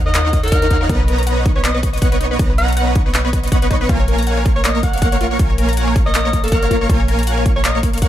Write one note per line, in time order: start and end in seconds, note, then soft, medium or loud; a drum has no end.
0.00 0.88 D#2 medium
0.00 0.87 D#4 loud
0.00 0.87 A#4 medium
0.00 0.87 C#5 medium
0.00 0.87 F5 medium
0.00 0.87 F#5 loud
0.06 0.09 A#4 loud
0.06 0.41 D#5 medium
0.14 0.21 A#4 medium
0.14 clap loud
0.14 closed hi-hat medium
0.25 0.28 A#4 loud
0.33 0.40 A#4 medium
0.33 kick medium
0.33 closed hi-hat medium
0.43 0.81 A#4 loud
0.43 0.47 C#5 medium
0.43 closed hi-hat medium
0.48 closed hi-hat medium
0.52 0.62 D#5 loud
0.52 kick loud
0.52 closed hi-hat medium
0.62 0.70 A#4 loud
0.62 closed hi-hat medium
0.71 0.77 D#4 loud
0.71 kick medium
0.71 closed hi-hat medium
0.81 0.86 A#4 loud
0.89 2.38 B1 medium
0.89 1.44 B3 medium
0.89 0.99 D#4 medium
0.89 1.44 B4 medium
0.89 1.44 C#5 medium
0.89 1.44 D#5 medium
0.89 1.44 A#5 medium
0.89 kick loud
0.89 closed hi-hat medium
1.00 1.03 B4 loud
1.08 1.12 A#4 medium
1.08 closed hi-hat medium
1.18 1.22 A#5 loud
1.18 closed hi-hat soft
1.23 1.36 F#5 loud
1.23 closed hi-hat medium
1.27 closed hi-hat medium
1.37 1.45 B4 loud
1.45 2.37 B3 loud
1.45 1.55 D#4 medium
1.45 2.37 B4 medium
1.45 2.37 C#5 medium
1.45 2.37 D#5 medium
1.45 2.37 C#6 loud
1.45 kick loud
1.45 closed hi-hat medium
1.56 1.59 B4 loud
1.56 1.63 C#5 medium
1.64 1.71 B4 medium
1.64 1.79 D#5 medium
1.64 clap loud
1.64 closed hi-hat medium
1.74 1.78 B4 loud
1.83 1.89 B4 medium
1.83 kick medium
1.83 closed hi-hat medium
1.93 1.97 D#5 loud
1.93 closed hi-hat soft
1.98 2.11 F#5 loud
1.98 closed hi-hat medium
2.02 kick loud
2.02 closed hi-hat medium
2.12 2.20 B4 loud
2.12 closed hi-hat medium
2.21 2.27 D#4 loud
2.21 closed hi-hat medium
2.31 2.36 B4 medium
2.39 3.88 B1 medium
2.39 2.94 B3 medium
2.39 2.49 D#4 medium
2.39 2.94 B4 medium
2.39 2.94 C#5 medium
2.39 2.94 D#5 medium
2.39 2.94 A#5 medium
2.39 kick loud
2.39 closed hi-hat medium
2.50 2.53 B4 loud
2.58 2.62 A#4 medium
2.58 2.72 F#5 medium
2.58 closed hi-hat medium
2.68 2.72 A#5 loud
2.68 closed hi-hat soft
2.73 closed hi-hat medium
2.77 2.87 F#5 loud
2.77 2.83 F#5 medium
2.77 closed hi-hat medium
2.87 2.95 B4 loud
2.87 2.93 F#5 medium
2.95 3.87 B3 loud
2.95 3.05 D#4 medium
2.95 3.87 B4 medium
2.95 3.87 C#5 medium
2.95 3.87 D#5 medium
2.95 3.87 C#6 loud
2.95 kick loud
2.95 closed hi-hat medium
3.06 3.09 B4 loud
3.14 3.21 B4 medium
3.14 clap loud
3.14 closed hi-hat medium
3.25 3.28 B4 loud
3.33 3.40 B4 medium
3.33 kick medium
3.33 closed hi-hat medium
3.43 3.47 D#5 loud
3.43 closed hi-hat soft
3.48 closed hi-hat medium
3.52 3.62 F#5 loud
3.52 kick loud
3.52 closed hi-hat medium
3.62 3.70 B4 loud
3.62 closed hi-hat medium
3.71 3.77 D#4 loud
3.71 kick medium
3.71 closed hi-hat medium
3.81 3.86 B4 loud
3.89 5.38 A#1 medium
3.89 4.44 A#3 medium
3.89 3.99 F4 medium
3.89 4.44 A#4 medium
3.89 4.44 C#5 medium
3.89 4.44 F5 medium
3.89 4.44 G#5 medium
3.89 kick loud
3.89 closed hi-hat medium
4.00 4.03 C#5 loud
4.08 4.12 A#4 medium
4.08 closed hi-hat medium
4.18 4.22 A#5 loud
4.18 closed hi-hat soft
4.23 closed hi-hat medium
4.27 4.37 F#5 loud
4.27 closed hi-hat medium
4.37 4.45 C#5 loud
4.46 5.37 A#3 loud
4.46 4.55 F4 medium
4.46 5.37 A#4 medium
4.46 5.37 C#5 medium
4.46 5.37 F5 medium
4.46 5.37 C#6 loud
4.46 kick loud
4.46 closed hi-hat medium
4.56 4.63 C#5 medium
4.56 4.59 C#5 loud
4.64 4.71 C#5 medium
4.64 4.79 D#5 medium
4.64 clap loud
4.64 closed hi-hat medium
4.75 4.78 C#5 loud
4.83 4.90 C#5 medium
4.83 5.36 F#5 medium
4.83 kick medium
4.83 closed hi-hat medium
4.93 4.97 F5 loud
4.93 closed hi-hat soft
4.98 closed hi-hat medium
5.02 5.12 F#5 loud
5.02 kick loud
5.02 closed hi-hat medium
5.12 5.20 C#5 loud
5.12 closed hi-hat medium
5.21 5.27 F4 loud
5.21 closed hi-hat medium
5.31 5.36 C#5 loud
5.39 6.88 A#1 medium
5.39 5.94 A#3 medium
5.39 5.49 F4 medium
5.39 5.94 A#4 medium
5.39 5.94 C#5 medium
5.39 5.94 F5 medium
5.39 5.94 G#5 medium
5.39 kick loud
5.39 closed hi-hat medium
5.50 5.53 C#5 loud
5.58 5.62 A#4 medium
5.58 closed hi-hat medium
5.69 5.72 A#5 loud
5.69 closed hi-hat soft
5.73 closed hi-hat medium
5.77 5.87 F#5 loud
5.77 closed hi-hat medium
5.88 5.95 C#5 loud
5.96 6.87 A#3 loud
5.96 6.06 F4 medium
5.96 6.87 A#4 medium
5.96 6.87 C#5 medium
5.96 6.87 F5 medium
5.96 6.87 C#6 loud
5.96 kick loud
5.96 closed hi-hat medium
6.06 6.09 C#5 loud
6.06 6.42 D#5 medium
6.14 6.21 C#5 medium
6.14 clap loud
6.14 closed hi-hat medium
6.25 6.28 C#5 loud
6.33 6.40 C#5 medium
6.33 kick medium
6.33 closed hi-hat medium
6.44 6.81 A#4 loud
6.44 6.47 F5 loud
6.44 closed hi-hat medium
6.48 closed hi-hat medium
6.52 6.62 F#5 loud
6.52 kick loud
6.52 closed hi-hat medium
6.63 6.70 C#5 loud
6.63 closed hi-hat medium
6.71 6.77 F4 loud
6.71 kick medium
6.71 closed hi-hat medium
6.81 6.86 C#5 loud
6.89 8.08 A#1 medium
6.89 7.44 A#3 medium
6.89 6.99 F4 medium
6.89 7.44 A#4 medium
6.89 7.44 C#5 medium
6.89 7.44 F5 medium
6.89 7.44 G#5 medium
6.89 kick loud
6.89 closed hi-hat medium
7.00 7.03 C#5 loud
7.08 7.12 A#4 medium
7.08 closed hi-hat medium
7.19 7.22 A#5 loud
7.19 closed hi-hat soft
7.23 closed hi-hat medium
7.27 7.37 F#5 loud
7.27 closed hi-hat medium
7.37 7.45 C#5 loud
7.46 8.08 A#3 loud
7.46 7.55 F4 medium
7.46 8.08 A#4 medium
7.46 8.08 C#5 medium
7.46 8.08 F5 medium
7.46 8.08 C#6 loud
7.46 kick loud
7.46 closed hi-hat medium
7.56 7.63 C#5 medium
7.56 7.59 C#5 loud
7.64 7.71 C#5 medium
7.64 7.79 D#5 medium
7.64 clap loud
7.64 closed hi-hat medium
7.75 7.78 C#5 loud
7.83 7.90 C#5 medium
7.83 kick medium
7.83 closed hi-hat medium
7.93 7.97 F5 medium
7.93 closed hi-hat medium
7.98 closed hi-hat medium
8.02 8.08 F#5 loud
8.02 kick loud
8.02 closed hi-hat medium